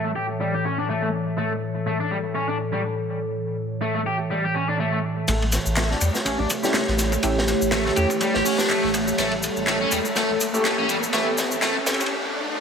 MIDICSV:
0, 0, Header, 1, 8, 480
1, 0, Start_track
1, 0, Tempo, 487805
1, 1357, Time_signature, 4, 2, 24, 8
1, 12400, End_track
2, 0, Start_track
2, 0, Title_t, "Ambient pad"
2, 0, Program_c, 0, 92
2, 0, Note_on_c, 0, 45, 78
2, 0, Note_on_c, 0, 52, 74
2, 0, Note_on_c, 0, 69, 88
2, 0, Note_on_c, 0, 73, 74
2, 5157, Note_off_c, 0, 69, 0
2, 5157, Note_off_c, 0, 73, 0
2, 5158, Note_off_c, 0, 45, 0
2, 5158, Note_off_c, 0, 52, 0
2, 5192, Note_on_c, 0, 57, 81
2, 5192, Note_on_c, 0, 67, 92
2, 5194, Note_on_c, 0, 73, 75
2, 8996, Note_off_c, 0, 67, 0
2, 9025, Note_on_c, 0, 69, 91
2, 11875, Note_off_c, 0, 57, 0
2, 11876, Note_off_c, 0, 73, 0
2, 11882, Note_off_c, 0, 69, 0
2, 12400, End_track
3, 0, Start_track
3, 0, Title_t, "Synth stab"
3, 0, Program_c, 1, 62
3, 6532, Note_on_c, 1, 57, 75
3, 6532, Note_on_c, 1, 61, 71
3, 6532, Note_on_c, 1, 67, 84
3, 6533, Note_on_c, 1, 64, 68
3, 6650, Note_off_c, 1, 57, 0
3, 6650, Note_off_c, 1, 61, 0
3, 6650, Note_off_c, 1, 64, 0
3, 6650, Note_off_c, 1, 67, 0
3, 7119, Note_on_c, 1, 57, 80
3, 7119, Note_on_c, 1, 61, 72
3, 7119, Note_on_c, 1, 64, 74
3, 7119, Note_on_c, 1, 67, 86
3, 7263, Note_off_c, 1, 57, 0
3, 7263, Note_off_c, 1, 61, 0
3, 7263, Note_off_c, 1, 64, 0
3, 7263, Note_off_c, 1, 67, 0
3, 7838, Note_on_c, 1, 57, 75
3, 7838, Note_on_c, 1, 61, 70
3, 7838, Note_on_c, 1, 64, 71
3, 7839, Note_on_c, 1, 67, 80
3, 7982, Note_off_c, 1, 61, 0
3, 7983, Note_off_c, 1, 57, 0
3, 7983, Note_off_c, 1, 64, 0
3, 7983, Note_off_c, 1, 67, 0
3, 10369, Note_on_c, 1, 64, 69
3, 10370, Note_on_c, 1, 57, 75
3, 10371, Note_on_c, 1, 61, 69
3, 10371, Note_on_c, 1, 67, 84
3, 10488, Note_off_c, 1, 64, 0
3, 10489, Note_off_c, 1, 57, 0
3, 10489, Note_off_c, 1, 61, 0
3, 10489, Note_off_c, 1, 67, 0
3, 10955, Note_on_c, 1, 57, 82
3, 10956, Note_on_c, 1, 61, 74
3, 10956, Note_on_c, 1, 67, 89
3, 10957, Note_on_c, 1, 64, 74
3, 11101, Note_off_c, 1, 57, 0
3, 11101, Note_off_c, 1, 61, 0
3, 11101, Note_off_c, 1, 67, 0
3, 11102, Note_off_c, 1, 64, 0
3, 11674, Note_on_c, 1, 64, 72
3, 11675, Note_on_c, 1, 57, 78
3, 11676, Note_on_c, 1, 61, 70
3, 11676, Note_on_c, 1, 67, 86
3, 11821, Note_off_c, 1, 57, 0
3, 11821, Note_off_c, 1, 61, 0
3, 11821, Note_off_c, 1, 64, 0
3, 11821, Note_off_c, 1, 67, 0
3, 12400, End_track
4, 0, Start_track
4, 0, Title_t, "Distorted electric guitar"
4, 0, Program_c, 2, 30
4, 53, Note_on_c, 2, 57, 72
4, 97, Note_off_c, 2, 57, 0
4, 154, Note_on_c, 2, 67, 94
4, 251, Note_off_c, 2, 67, 0
4, 398, Note_on_c, 2, 55, 78
4, 519, Note_off_c, 2, 55, 0
4, 534, Note_on_c, 2, 67, 70
4, 628, Note_off_c, 2, 67, 0
4, 640, Note_on_c, 2, 61, 74
4, 760, Note_off_c, 2, 61, 0
4, 776, Note_on_c, 2, 62, 91
4, 849, Note_off_c, 2, 62, 0
4, 880, Note_on_c, 2, 57, 92
4, 1000, Note_off_c, 2, 57, 0
4, 1014, Note_on_c, 2, 57, 68
4, 1058, Note_off_c, 2, 57, 0
4, 1356, Note_on_c, 2, 57, 95
4, 1485, Note_off_c, 2, 57, 0
4, 1838, Note_on_c, 2, 57, 83
4, 1933, Note_off_c, 2, 57, 0
4, 1971, Note_on_c, 2, 62, 74
4, 2066, Note_off_c, 2, 62, 0
4, 2076, Note_on_c, 2, 55, 73
4, 2134, Note_off_c, 2, 55, 0
4, 2314, Note_on_c, 2, 61, 91
4, 2444, Note_off_c, 2, 61, 0
4, 2450, Note_on_c, 2, 62, 70
4, 2526, Note_off_c, 2, 62, 0
4, 2691, Note_on_c, 2, 55, 91
4, 2766, Note_off_c, 2, 55, 0
4, 3754, Note_on_c, 2, 57, 101
4, 3877, Note_off_c, 2, 57, 0
4, 3892, Note_on_c, 2, 57, 72
4, 3937, Note_off_c, 2, 57, 0
4, 3998, Note_on_c, 2, 67, 98
4, 4093, Note_off_c, 2, 67, 0
4, 4237, Note_on_c, 2, 55, 74
4, 4359, Note_off_c, 2, 55, 0
4, 4373, Note_on_c, 2, 67, 72
4, 4467, Note_off_c, 2, 67, 0
4, 4480, Note_on_c, 2, 61, 74
4, 4600, Note_off_c, 2, 61, 0
4, 4615, Note_on_c, 2, 62, 96
4, 4688, Note_off_c, 2, 62, 0
4, 4720, Note_on_c, 2, 57, 96
4, 4840, Note_off_c, 2, 57, 0
4, 4852, Note_on_c, 2, 57, 74
4, 4897, Note_off_c, 2, 57, 0
4, 5197, Note_on_c, 2, 57, 100
4, 5325, Note_off_c, 2, 57, 0
4, 5678, Note_on_c, 2, 57, 79
4, 5773, Note_off_c, 2, 57, 0
4, 5810, Note_on_c, 2, 62, 74
4, 5906, Note_off_c, 2, 62, 0
4, 5916, Note_on_c, 2, 55, 70
4, 5974, Note_off_c, 2, 55, 0
4, 6156, Note_on_c, 2, 61, 90
4, 6285, Note_off_c, 2, 61, 0
4, 6290, Note_on_c, 2, 62, 69
4, 6366, Note_off_c, 2, 62, 0
4, 6529, Note_on_c, 2, 55, 89
4, 6605, Note_off_c, 2, 55, 0
4, 7598, Note_on_c, 2, 57, 99
4, 7719, Note_off_c, 2, 57, 0
4, 7729, Note_on_c, 2, 57, 75
4, 7775, Note_off_c, 2, 57, 0
4, 7834, Note_on_c, 2, 67, 99
4, 7931, Note_off_c, 2, 67, 0
4, 8075, Note_on_c, 2, 55, 75
4, 8198, Note_off_c, 2, 55, 0
4, 8205, Note_on_c, 2, 67, 74
4, 8303, Note_off_c, 2, 67, 0
4, 8313, Note_on_c, 2, 61, 74
4, 8437, Note_off_c, 2, 61, 0
4, 8447, Note_on_c, 2, 62, 92
4, 8524, Note_off_c, 2, 62, 0
4, 8558, Note_on_c, 2, 57, 96
4, 8679, Note_off_c, 2, 57, 0
4, 8693, Note_on_c, 2, 57, 75
4, 8737, Note_off_c, 2, 57, 0
4, 9037, Note_on_c, 2, 57, 87
4, 9165, Note_off_c, 2, 57, 0
4, 9516, Note_on_c, 2, 57, 78
4, 9612, Note_off_c, 2, 57, 0
4, 9653, Note_on_c, 2, 61, 70
4, 9747, Note_off_c, 2, 61, 0
4, 9756, Note_on_c, 2, 55, 68
4, 9814, Note_off_c, 2, 55, 0
4, 9996, Note_on_c, 2, 57, 93
4, 10125, Note_off_c, 2, 57, 0
4, 10477, Note_on_c, 2, 57, 75
4, 10573, Note_off_c, 2, 57, 0
4, 10610, Note_on_c, 2, 61, 72
4, 10706, Note_off_c, 2, 61, 0
4, 10719, Note_on_c, 2, 55, 77
4, 10775, Note_off_c, 2, 55, 0
4, 10957, Note_on_c, 2, 57, 100
4, 11085, Note_off_c, 2, 57, 0
4, 11433, Note_on_c, 2, 57, 101
4, 11563, Note_off_c, 2, 57, 0
4, 12400, End_track
5, 0, Start_track
5, 0, Title_t, "Sub bass"
5, 0, Program_c, 3, 38
5, 5197, Note_on_c, 3, 33, 98
5, 5492, Note_off_c, 3, 33, 0
5, 5568, Note_on_c, 3, 33, 96
5, 5853, Note_off_c, 3, 33, 0
5, 5914, Note_on_c, 3, 40, 88
5, 6001, Note_off_c, 3, 40, 0
5, 6157, Note_on_c, 3, 33, 41
5, 6265, Note_off_c, 3, 33, 0
5, 6287, Note_on_c, 3, 33, 83
5, 6356, Note_off_c, 3, 33, 0
5, 6769, Note_on_c, 3, 33, 82
5, 7053, Note_off_c, 3, 33, 0
5, 7116, Note_on_c, 3, 33, 97
5, 7411, Note_off_c, 3, 33, 0
5, 7489, Note_on_c, 3, 33, 97
5, 7773, Note_off_c, 3, 33, 0
5, 7839, Note_on_c, 3, 40, 82
5, 7923, Note_off_c, 3, 40, 0
5, 8214, Note_on_c, 3, 33, 82
5, 8279, Note_off_c, 3, 33, 0
5, 8691, Note_on_c, 3, 33, 81
5, 8974, Note_off_c, 3, 33, 0
5, 9036, Note_on_c, 3, 33, 97
5, 9331, Note_off_c, 3, 33, 0
5, 9412, Note_on_c, 3, 33, 98
5, 9695, Note_off_c, 3, 33, 0
5, 9757, Note_on_c, 3, 40, 88
5, 9842, Note_off_c, 3, 40, 0
5, 9999, Note_on_c, 3, 33, 45
5, 10106, Note_off_c, 3, 33, 0
5, 10132, Note_on_c, 3, 33, 83
5, 10198, Note_off_c, 3, 33, 0
5, 10612, Note_on_c, 3, 33, 83
5, 10895, Note_off_c, 3, 33, 0
5, 10956, Note_on_c, 3, 33, 104
5, 11251, Note_off_c, 3, 33, 0
5, 11331, Note_on_c, 3, 33, 93
5, 11614, Note_off_c, 3, 33, 0
5, 11681, Note_on_c, 3, 40, 91
5, 11764, Note_off_c, 3, 40, 0
5, 12400, End_track
6, 0, Start_track
6, 0, Title_t, "Riser"
6, 0, Program_c, 4, 103
6, 5193, Note_on_c, 4, 60, 79
6, 12400, Note_off_c, 4, 60, 0
6, 12400, End_track
7, 0, Start_track
7, 0, Title_t, "Swell"
7, 0, Program_c, 5, 103
7, 11915, Note_on_c, 5, 60, 81
7, 12400, Note_off_c, 5, 60, 0
7, 12400, End_track
8, 0, Start_track
8, 0, Title_t, "Drums"
8, 5194, Note_on_c, 9, 82, 32
8, 5196, Note_on_c, 9, 36, 99
8, 5196, Note_on_c, 9, 51, 91
8, 5292, Note_off_c, 9, 82, 0
8, 5295, Note_off_c, 9, 36, 0
8, 5295, Note_off_c, 9, 51, 0
8, 5336, Note_on_c, 9, 51, 42
8, 5433, Note_off_c, 9, 51, 0
8, 5433, Note_on_c, 9, 51, 66
8, 5433, Note_on_c, 9, 82, 73
8, 5442, Note_on_c, 9, 38, 35
8, 5531, Note_off_c, 9, 51, 0
8, 5531, Note_off_c, 9, 82, 0
8, 5541, Note_off_c, 9, 38, 0
8, 5569, Note_on_c, 9, 82, 42
8, 5667, Note_off_c, 9, 82, 0
8, 5670, Note_on_c, 9, 51, 84
8, 5674, Note_on_c, 9, 39, 98
8, 5674, Note_on_c, 9, 82, 32
8, 5678, Note_on_c, 9, 38, 108
8, 5769, Note_off_c, 9, 51, 0
8, 5772, Note_off_c, 9, 39, 0
8, 5772, Note_off_c, 9, 82, 0
8, 5776, Note_off_c, 9, 38, 0
8, 5817, Note_on_c, 9, 38, 43
8, 5914, Note_on_c, 9, 82, 74
8, 5915, Note_on_c, 9, 51, 64
8, 5916, Note_off_c, 9, 38, 0
8, 6012, Note_off_c, 9, 82, 0
8, 6013, Note_off_c, 9, 51, 0
8, 6050, Note_on_c, 9, 82, 41
8, 6052, Note_on_c, 9, 38, 47
8, 6149, Note_off_c, 9, 82, 0
8, 6150, Note_off_c, 9, 38, 0
8, 6156, Note_on_c, 9, 82, 34
8, 6157, Note_on_c, 9, 51, 78
8, 6254, Note_off_c, 9, 82, 0
8, 6255, Note_off_c, 9, 51, 0
8, 6394, Note_on_c, 9, 82, 74
8, 6395, Note_on_c, 9, 51, 68
8, 6403, Note_on_c, 9, 36, 90
8, 6493, Note_off_c, 9, 82, 0
8, 6494, Note_off_c, 9, 51, 0
8, 6501, Note_off_c, 9, 36, 0
8, 6530, Note_on_c, 9, 82, 45
8, 6537, Note_on_c, 9, 38, 43
8, 6628, Note_off_c, 9, 82, 0
8, 6630, Note_off_c, 9, 38, 0
8, 6630, Note_on_c, 9, 38, 110
8, 6634, Note_on_c, 9, 39, 107
8, 6634, Note_on_c, 9, 82, 33
8, 6639, Note_on_c, 9, 51, 87
8, 6728, Note_off_c, 9, 38, 0
8, 6732, Note_off_c, 9, 39, 0
8, 6732, Note_off_c, 9, 82, 0
8, 6737, Note_off_c, 9, 51, 0
8, 6763, Note_on_c, 9, 38, 46
8, 6861, Note_off_c, 9, 38, 0
8, 6868, Note_on_c, 9, 38, 37
8, 6874, Note_on_c, 9, 82, 80
8, 6876, Note_on_c, 9, 51, 66
8, 6966, Note_off_c, 9, 38, 0
8, 6972, Note_off_c, 9, 82, 0
8, 6974, Note_off_c, 9, 51, 0
8, 7008, Note_on_c, 9, 36, 93
8, 7011, Note_on_c, 9, 82, 42
8, 7106, Note_off_c, 9, 36, 0
8, 7110, Note_off_c, 9, 82, 0
8, 7112, Note_on_c, 9, 51, 86
8, 7116, Note_on_c, 9, 82, 33
8, 7117, Note_on_c, 9, 36, 118
8, 7210, Note_off_c, 9, 51, 0
8, 7214, Note_off_c, 9, 82, 0
8, 7215, Note_off_c, 9, 36, 0
8, 7266, Note_on_c, 9, 38, 55
8, 7353, Note_off_c, 9, 38, 0
8, 7353, Note_on_c, 9, 38, 42
8, 7358, Note_on_c, 9, 51, 69
8, 7359, Note_on_c, 9, 82, 79
8, 7452, Note_off_c, 9, 38, 0
8, 7456, Note_off_c, 9, 51, 0
8, 7457, Note_off_c, 9, 82, 0
8, 7494, Note_on_c, 9, 82, 45
8, 7588, Note_on_c, 9, 38, 115
8, 7592, Note_off_c, 9, 82, 0
8, 7595, Note_on_c, 9, 51, 88
8, 7598, Note_on_c, 9, 39, 105
8, 7598, Note_on_c, 9, 82, 32
8, 7687, Note_off_c, 9, 38, 0
8, 7694, Note_off_c, 9, 51, 0
8, 7697, Note_off_c, 9, 39, 0
8, 7697, Note_off_c, 9, 82, 0
8, 7734, Note_on_c, 9, 38, 46
8, 7833, Note_off_c, 9, 38, 0
8, 7835, Note_on_c, 9, 51, 65
8, 7840, Note_on_c, 9, 82, 76
8, 7933, Note_off_c, 9, 51, 0
8, 7939, Note_off_c, 9, 82, 0
8, 7970, Note_on_c, 9, 36, 83
8, 7975, Note_on_c, 9, 82, 43
8, 8069, Note_off_c, 9, 36, 0
8, 8073, Note_off_c, 9, 82, 0
8, 8075, Note_on_c, 9, 51, 86
8, 8081, Note_on_c, 9, 82, 34
8, 8082, Note_on_c, 9, 36, 107
8, 8173, Note_off_c, 9, 51, 0
8, 8180, Note_off_c, 9, 36, 0
8, 8180, Note_off_c, 9, 82, 0
8, 8211, Note_on_c, 9, 38, 58
8, 8310, Note_off_c, 9, 38, 0
8, 8319, Note_on_c, 9, 46, 71
8, 8320, Note_on_c, 9, 82, 77
8, 8417, Note_off_c, 9, 46, 0
8, 8419, Note_off_c, 9, 82, 0
8, 8447, Note_on_c, 9, 38, 115
8, 8455, Note_on_c, 9, 82, 44
8, 8546, Note_off_c, 9, 38, 0
8, 8554, Note_off_c, 9, 82, 0
8, 8556, Note_on_c, 9, 51, 83
8, 8559, Note_on_c, 9, 39, 110
8, 8559, Note_on_c, 9, 82, 31
8, 8654, Note_off_c, 9, 51, 0
8, 8657, Note_off_c, 9, 39, 0
8, 8657, Note_off_c, 9, 82, 0
8, 8795, Note_on_c, 9, 51, 73
8, 8799, Note_on_c, 9, 82, 81
8, 8894, Note_off_c, 9, 51, 0
8, 8898, Note_off_c, 9, 82, 0
8, 8932, Note_on_c, 9, 82, 40
8, 9030, Note_off_c, 9, 82, 0
8, 9036, Note_on_c, 9, 51, 93
8, 9038, Note_on_c, 9, 82, 33
8, 9041, Note_on_c, 9, 38, 46
8, 9134, Note_off_c, 9, 51, 0
8, 9137, Note_off_c, 9, 82, 0
8, 9139, Note_off_c, 9, 38, 0
8, 9165, Note_on_c, 9, 51, 45
8, 9264, Note_off_c, 9, 51, 0
8, 9277, Note_on_c, 9, 82, 73
8, 9285, Note_on_c, 9, 51, 61
8, 9376, Note_off_c, 9, 82, 0
8, 9384, Note_off_c, 9, 51, 0
8, 9413, Note_on_c, 9, 82, 43
8, 9511, Note_off_c, 9, 82, 0
8, 9517, Note_on_c, 9, 39, 107
8, 9517, Note_on_c, 9, 82, 32
8, 9521, Note_on_c, 9, 38, 54
8, 9525, Note_on_c, 9, 51, 88
8, 9615, Note_off_c, 9, 39, 0
8, 9615, Note_off_c, 9, 82, 0
8, 9619, Note_off_c, 9, 38, 0
8, 9624, Note_off_c, 9, 51, 0
8, 9755, Note_on_c, 9, 82, 75
8, 9762, Note_on_c, 9, 51, 66
8, 9854, Note_off_c, 9, 82, 0
8, 9860, Note_off_c, 9, 51, 0
8, 9890, Note_on_c, 9, 82, 41
8, 9989, Note_off_c, 9, 82, 0
8, 9995, Note_on_c, 9, 82, 32
8, 10000, Note_on_c, 9, 38, 61
8, 10001, Note_on_c, 9, 51, 86
8, 10093, Note_off_c, 9, 82, 0
8, 10099, Note_off_c, 9, 38, 0
8, 10100, Note_off_c, 9, 51, 0
8, 10238, Note_on_c, 9, 82, 77
8, 10243, Note_on_c, 9, 51, 62
8, 10336, Note_off_c, 9, 82, 0
8, 10341, Note_off_c, 9, 51, 0
8, 10374, Note_on_c, 9, 82, 43
8, 10472, Note_off_c, 9, 82, 0
8, 10478, Note_on_c, 9, 51, 81
8, 10480, Note_on_c, 9, 38, 71
8, 10480, Note_on_c, 9, 39, 113
8, 10480, Note_on_c, 9, 82, 32
8, 10576, Note_off_c, 9, 51, 0
8, 10578, Note_off_c, 9, 38, 0
8, 10578, Note_off_c, 9, 39, 0
8, 10578, Note_off_c, 9, 82, 0
8, 10715, Note_on_c, 9, 51, 63
8, 10718, Note_on_c, 9, 82, 77
8, 10813, Note_off_c, 9, 51, 0
8, 10817, Note_off_c, 9, 82, 0
8, 10854, Note_on_c, 9, 82, 44
8, 10950, Note_on_c, 9, 51, 86
8, 10953, Note_off_c, 9, 82, 0
8, 10954, Note_on_c, 9, 38, 77
8, 10958, Note_on_c, 9, 82, 32
8, 11048, Note_off_c, 9, 51, 0
8, 11053, Note_off_c, 9, 38, 0
8, 11056, Note_off_c, 9, 82, 0
8, 11195, Note_on_c, 9, 82, 73
8, 11199, Note_on_c, 9, 51, 68
8, 11202, Note_on_c, 9, 38, 75
8, 11293, Note_off_c, 9, 82, 0
8, 11298, Note_off_c, 9, 51, 0
8, 11300, Note_off_c, 9, 38, 0
8, 11329, Note_on_c, 9, 82, 43
8, 11428, Note_off_c, 9, 82, 0
8, 11437, Note_on_c, 9, 39, 106
8, 11437, Note_on_c, 9, 82, 31
8, 11438, Note_on_c, 9, 38, 89
8, 11439, Note_on_c, 9, 51, 81
8, 11535, Note_off_c, 9, 39, 0
8, 11535, Note_off_c, 9, 82, 0
8, 11536, Note_off_c, 9, 38, 0
8, 11537, Note_off_c, 9, 51, 0
8, 11675, Note_on_c, 9, 38, 91
8, 11676, Note_on_c, 9, 82, 75
8, 11679, Note_on_c, 9, 51, 68
8, 11751, Note_off_c, 9, 51, 0
8, 11751, Note_on_c, 9, 51, 67
8, 11773, Note_off_c, 9, 38, 0
8, 11775, Note_off_c, 9, 82, 0
8, 11812, Note_on_c, 9, 82, 40
8, 11815, Note_off_c, 9, 51, 0
8, 11815, Note_on_c, 9, 51, 62
8, 11869, Note_off_c, 9, 51, 0
8, 11869, Note_on_c, 9, 51, 64
8, 11910, Note_off_c, 9, 82, 0
8, 11968, Note_off_c, 9, 51, 0
8, 12400, End_track
0, 0, End_of_file